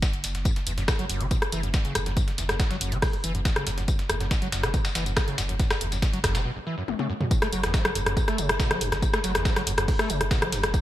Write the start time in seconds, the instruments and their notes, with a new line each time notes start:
0.02 kick, snare, closed hi-hat, tambourine
0.13 sub bass F#1, closed hi-hat
0.24 sub bass F#1, snare, open hi-hat, tambourine
0.35 sub bass F#1, snare, closed hi-hat
0.45 acid bass F#2, kick, closed hi-hat, tambourine
0.56 acid bass F#1, snare, closed hi-hat
0.67 sub bass F#1, acid bass E2, open hi-hat, tambourine
0.78 sub bass F#1, acid bass F#2, snare, closed hi-hat
0.88 acid bass F#2, kick, cross-stick, snare, closed hi-hat, tambourine
0.99 sub bass F#1, acid bass F#3, closed hi-hat
1.10 sub bass F#1, acid bass F#2, open hi-hat, tambourine
1.21 sub bass F#1, acid bass C#3, closed hi-hat
1.31 acid bass B2, kick, closed hi-hat, tambourine
1.42 acid bass F#1, cross-stick, closed hi-hat
1.52 sub bass F#1, acid bass E3, open hi-hat, tambourine
1.63 sub bass F#1, acid bass F#2, closed hi-hat
1.74 acid bass F#1, kick, snare, closed hi-hat, tambourine
1.85 sub bass F#1, acid bass C#3, closed hi-hat
1.95 sub bass F#1, acid bass F#2, cross-stick, open hi-hat, tambourine
2.06 sub bass F#1, acid bass F#2, snare, closed hi-hat
2.17 acid bass F#2, kick, closed hi-hat, tambourine
2.28 acid bass F#1, snare, closed hi-hat
2.38 sub bass F#1, acid bass E2, snare, open hi-hat, tambourine
2.49 sub bass F#1, acid bass F#2, cross-stick, snare, closed hi-hat
2.60 acid bass F#2, kick, snare, closed hi-hat, tambourine
2.71 sub bass F#1, acid bass F#3, snare, closed hi-hat
2.81 sub bass F#1, acid bass F#2, open hi-hat, tambourine
2.92 sub bass F#1, acid bass C#3, closed hi-hat
3.02 acid bass B2, kick, cross-stick, closed hi-hat, open hi-hat
3.13 acid bass F#1, closed hi-hat
3.24 sub bass F#1, acid bass E3, open hi-hat, tambourine
3.35 sub bass F#1, acid bass F#2, closed hi-hat
3.45 acid bass F#1, kick, snare, closed hi-hat, tambourine
3.56 sub bass F#1, acid bass C#3, cross-stick, closed hi-hat
3.67 sub bass F#1, acid bass F#2, snare, open hi-hat, tambourine
3.78 sub bass F#1, acid bass F#2, snare, closed hi-hat
3.88 acid bass F#2, kick, closed hi-hat, tambourine
3.99 acid bass F#1, snare, closed hi-hat
4.09 sub bass F#1, acid bass E2, cross-stick, open hi-hat, tambourine
4.20 sub bass F#1, acid bass F#2, snare, closed hi-hat
4.31 acid bass F#2, kick, snare, closed hi-hat, tambourine
4.42 sub bass F#1, acid bass F#3, closed hi-hat
4.52 sub bass F#1, acid bass F#2, snare, open hi-hat, tambourine
4.63 sub bass F#1, acid bass C#3, cross-stick, snare, closed hi-hat
4.74 acid bass B2, kick, closed hi-hat, tambourine
4.85 acid bass F#1, snare, closed hi-hat, tambourine
4.95 sub bass F#1, acid bass E3, snare, open hi-hat, tambourine
5.06 sub bass F#1, acid bass F#2, closed hi-hat, tambourine
5.17 acid bass F#1, kick, cross-stick, snare, closed hi-hat, tambourine
5.28 sub bass F#1, acid bass C#3, closed hi-hat
5.38 sub bass F#1, acid bass F#2, snare, open hi-hat, tambourine
5.49 sub bass F#1, acid bass F#2, closed hi-hat
5.59 acid bass F#2, kick, snare, closed hi-hat, tambourine
5.70 acid bass F#1, cross-stick, snare, closed hi-hat, tambourine
5.81 sub bass F#1, acid bass E2, open hi-hat
5.92 sub bass F#1, acid bass F#2, snare, closed hi-hat, tambourine
6.02 acid bass F#2, kick, snare, closed hi-hat, tambourine
6.13 sub bass F#1, acid bass F#3, closed hi-hat
6.24 sub bass F#1, acid bass F#2, kick, cross-stick, snare, open hi-hat, tambourine
6.35 sub bass F#1, acid bass C#3, snare, closed hi-hat, tambourine
6.45 acid bass B2
6.56 acid bass F#1
6.67 acid bass E3
6.78 acid bass F#2
6.88 acid bass F#1, high tom
6.99 acid bass C#3, high tom
7.10 acid bass F#2
7.21 acid bass F#2, mid tom
7.31 acid bass F#2, kick, closed hi-hat, tambourine
7.42 acid bass A3, cross-stick, snare, closed hi-hat
7.52 sub bass F#1, acid bass F#3, open hi-hat, tambourine
7.63 sub bass F#1, acid bass E2, cross-stick, snare, closed hi-hat
7.74 acid bass F#3, kick, snare, closed hi-hat, tambourine
7.85 sub bass F#1, acid bass F#3, cross-stick, closed hi-hat
7.95 sub bass F#1, acid bass F#2, open hi-hat, tambourine
8.06 sub bass F#1, acid bass F#2, cross-stick, closed hi-hat
8.17 acid bass E2, kick, closed hi-hat, tambourine
8.28 acid bass A3, cross-stick, closed hi-hat
8.38 sub bass F#1, acid bass C#3, open hi-hat, tambourine
8.49 sub bass F#1, acid bass F#2, cross-stick, closed hi-hat
8.60 acid bass B2, kick, snare, closed hi-hat, tambourine
8.70 sub bass F#1, acid bass F#3, cross-stick, closed hi-hat
8.81 sub bass F#1, acid bass F#2, open hi-hat, tambourine
8.92 acid bass F#1, sub bass F#1, cross-stick, snare, closed hi-hat
9.02 acid bass F#2, kick, closed hi-hat, tambourine
9.13 acid bass A3, cross-stick, snare, closed hi-hat
9.24 sub bass F#1, acid bass F#3, snare, open hi-hat, tambourine
9.35 sub bass F#1, acid bass E2, cross-stick, snare, closed hi-hat
9.45 acid bass F#3, kick, snare, closed hi-hat, tambourine
9.56 sub bass F#1, acid bass F#3, cross-stick, snare, closed hi-hat
9.67 sub bass F#1, acid bass F#2, open hi-hat, tambourine
9.78 sub bass F#1, acid bass F#2, cross-stick, closed hi-hat
9.88 acid bass E2, kick, closed hi-hat, open hi-hat
9.99 acid bass A3, cross-stick, closed hi-hat
10.10 sub bass F#1, acid bass C#3, open hi-hat, tambourine
10.20 sub bass F#1, acid bass F#2, cross-stick, closed hi-hat
10.31 acid bass B2, kick, snare, closed hi-hat, tambourine
10.42 sub bass F#1, acid bass F#3, cross-stick, closed hi-hat
10.52 sub bass F#1, acid bass F#2, snare, open hi-hat, tambourine
10.63 acid bass F#1, sub bass F#1, cross-stick, snare, closed hi-hat
10.74 acid bass F#2, kick, closed hi-hat, tambourine